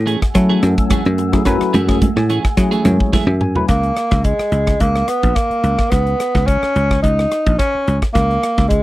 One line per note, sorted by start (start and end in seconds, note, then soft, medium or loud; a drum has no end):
0.00 0.16 A2 medium
0.00 3.65 A3 medium
0.00 3.66 F#5 medium
0.00 1.45 G#5 medium
0.00 3.66 E6 medium
0.06 0.21 E3 medium
0.06 0.21 A3 medium
0.06 0.21 C#4 medium
0.06 0.20 G#4 medium
0.06 closed hi-hat medium
0.21 muted clean electric guitar stroke soft
0.21 muted slap bass stroke soft
0.21 kick medium
0.21 cross-stick medium
0.21 closed hi-hat soft
0.34 0.57 F#3 medium
0.34 1.00 F#3 medium
0.34 1.00 A3 medium
0.34 1.00 C#4 medium
0.34 1.00 E4 medium
0.34 1.00 A4 medium
0.34 muted clean electric guitar stroke soft
0.34 kick medium
0.34 cross-stick medium
0.34 closed hi-hat medium
0.34 muted conga soft
0.49 0.62 E3 medium
0.49 0.62 A3 medium
0.49 0.62 C#4 medium
0.49 0.62 G#4 medium
0.63 0.74 F#2 medium
0.63 muted clean electric guitar stroke soft
0.63 cross-stick medium
0.63 closed hi-hat medium
0.78 kick medium
0.78 closed hi-hat soft
0.90 1.06 E3 medium
0.90 1.05 A3 medium
0.90 1.05 C#4 medium
0.90 1.04 G#4 medium
0.90 muted slap bass stroke soft
0.90 kick loud
0.90 cross-stick medium
0.90 closed hi-hat medium
0.90 high conga medium
1.05 1.38 F#2 medium
1.05 muted clean electric guitar stroke soft
1.05 closed hi-hat soft
1.18 muted clean electric guitar stroke soft
1.18 closed hi-hat medium
1.18 muted conga soft
1.32 1.41 F#3 medium
1.32 1.42 A3 medium
1.32 1.42 C#4 medium
1.32 1.42 E4 medium
1.32 1.42 G#4 medium
1.32 muted clean electric guitar stroke soft
1.32 kick medium
1.32 cross-stick medium
1.32 closed hi-hat soft
1.45 1.58 F#2 medium
1.45 1.73 F#3 loud
1.45 1.74 A3 medium
1.45 1.74 C#4 medium
1.45 1.74 E4 medium
1.45 1.74 B4 loud
1.45 3.67 G#5 medium
1.45 kick medium
1.45 cross-stick medium
1.45 closed hi-hat medium
1.45 muted conga soft
1.61 muted clean electric guitar stroke soft
1.61 muted slap bass stroke soft
1.61 cross-stick medium
1.61 closed hi-hat soft
1.73 2.07 F#2 medium
1.73 1.89 E3 medium
1.73 1.89 A3 medium
1.73 1.88 C#4 medium
1.73 1.87 G#4 medium
1.73 closed hi-hat medium
1.73 muted conga soft
1.73 high conga medium
1.88 1.97 F#3 medium
1.88 1.97 A3 medium
1.88 2.05 A3 soft
1.88 1.97 C#4 medium
1.88 2.05 C#4 soft
1.88 1.97 E4 medium
1.88 2.05 G#4 medium
1.88 1.97 G#4 medium
1.88 kick medium
1.88 cross-stick medium
1.88 closed hi-hat soft
2.02 kick loud
2.02 closed hi-hat medium
2.02 high conga medium
2.16 2.38 A2 medium
2.16 muted clean electric guitar stroke soft
2.16 cross-stick medium
2.30 2.45 E3 medium
2.30 2.44 A3 medium
2.30 2.43 C#4 medium
2.30 2.43 G#4 medium
2.30 closed hi-hat medium
2.44 muted clean electric guitar stroke soft
2.44 muted slap bass stroke soft
2.44 kick medium
2.44 cross-stick medium
2.44 closed hi-hat soft
2.57 2.79 F#3 medium
2.57 3.23 F#3 medium
2.57 3.23 A3 medium
2.57 3.23 C#4 medium
2.57 3.23 E4 medium
2.57 3.23 G#4 medium
2.57 muted clean electric guitar stroke soft
2.57 kick medium
2.57 cross-stick medium
2.57 closed hi-hat medium
2.57 muted conga soft
2.71 2.84 E3 medium
2.71 2.84 A3 medium
2.71 2.84 C#4 medium
2.71 2.84 G#4 medium
2.71 closed hi-hat soft
2.85 2.97 F#2 medium
2.85 3.12 C#5 medium
2.85 muted clean electric guitar stroke soft
2.85 cross-stick medium
2.85 closed hi-hat medium
2.85 high conga medium
2.85 low conga medium
3.00 kick medium
3.13 3.28 E3 medium
3.13 3.28 A3 medium
3.13 3.27 C#4 medium
3.13 3.27 G#4 medium
3.13 3.39 E5 medium
3.13 muted slap bass stroke soft
3.13 kick loud
3.13 snare medium
3.13 high conga medium
3.27 3.59 F#2 medium
3.27 muted clean electric guitar stroke soft
3.27 high tom medium
3.41 3.67 G#5 medium
3.41 muted clean electric guitar stroke soft
3.41 mid tom medium
3.41 muted conga soft
3.56 3.65 F#3 medium
3.56 3.65 A3 medium
3.56 3.65 C#4 medium
3.56 3.65 E4 medium
3.56 3.65 B4 loud
3.56 muted clean electric guitar stroke soft
3.56 floor tom medium
3.68 3.90 C#2 medium
3.68 4.25 A#3 medium
3.68 kick medium
3.68 cross-stick medium
3.68 closed hi-hat medium
3.83 closed hi-hat soft
3.96 cross-stick medium
3.96 closed hi-hat medium
4.11 4.33 C#2 medium
4.11 kick medium
4.11 cross-stick medium
4.11 closed hi-hat soft
4.24 4.81 G#3 medium
4.24 kick medium
4.24 closed hi-hat medium
4.39 muted slap bass stroke soft
4.39 cross-stick medium
4.39 closed hi-hat soft
4.52 4.74 C#2 medium
4.52 closed hi-hat medium
4.67 kick medium
4.67 cross-stick medium
4.67 closed hi-hat soft
4.80 5.02 C#2 medium
4.80 5.09 A#3 medium
4.80 kick medium
4.80 closed hi-hat medium
4.95 cross-stick medium
4.95 closed hi-hat soft
5.08 5.36 B3 medium
5.08 cross-stick medium
5.08 closed hi-hat medium
5.23 5.33 A#1 medium
5.23 kick medium
5.23 closed hi-hat soft
5.35 5.91 A#3 medium
5.35 kick medium
5.35 cross-stick medium
5.35 closed hi-hat medium
5.50 muted slap bass stroke soft
5.50 closed hi-hat soft
5.63 5.75 C#2 medium
5.63 closed hi-hat medium
5.79 kick medium
5.79 cross-stick medium
5.90 6.13 C#2 medium
5.90 6.48 B3 medium
5.90 kick medium
5.90 cross-stick medium
5.90 closed hi-hat medium
6.07 closed hi-hat soft
6.20 cross-stick medium
6.20 closed hi-hat medium
6.35 6.56 C#2 medium
6.35 kick medium
6.35 cross-stick medium
6.46 7.02 C#4 medium
6.46 kick medium
6.46 closed hi-hat medium
6.63 muted slap bass stroke soft
6.63 cross-stick medium
6.76 6.97 C#2 medium
6.76 closed hi-hat medium
6.91 kick medium
6.91 cross-stick medium
7.02 7.25 C#2 medium
7.02 7.55 D#4 medium
7.02 kick medium
7.02 closed hi-hat medium
7.19 cross-stick medium
7.19 closed hi-hat soft
7.31 cross-stick medium
7.31 closed hi-hat medium
7.46 7.56 A#1 medium
7.46 kick medium
7.46 closed hi-hat soft
7.58 7.99 C#4 medium
7.58 kick medium
7.58 cross-stick medium
7.58 closed hi-hat medium
7.75 muted slap bass stroke soft
7.88 7.99 C#2 medium
7.88 closed hi-hat medium
8.02 kick medium
8.02 cross-stick medium
8.02 closed hi-hat soft
8.14 8.36 C#2 medium
8.14 8.66 A#3 medium
8.14 kick medium
8.14 cross-stick medium
8.14 closed hi-hat medium
8.31 closed hi-hat soft
8.43 cross-stick medium
8.43 closed hi-hat medium
8.58 8.79 C#2 medium
8.58 kick medium
8.58 cross-stick medium
8.58 closed hi-hat soft
8.68 8.83 G#3 medium
8.68 kick medium
8.68 closed hi-hat medium